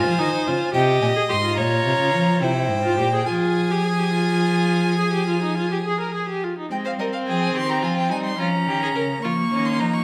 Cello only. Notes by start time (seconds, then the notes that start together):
0.06 F3
0.19 D#3
0.47 C#3
0.74 C3
1.01 A#2
1.30 G#2
1.58 A#2
1.86 C3
1.99 C#3
2.14 F3
2.42 C3
2.70 G#2
2.98 A#2
3.27 F3
6.71 G#3
6.98 G3
7.27 F3
7.55 D#3
7.82 F3
8.11 G3
8.39 F3
8.67 D#3
8.95 C#3
9.23 F3
9.52 D#3
9.79 F3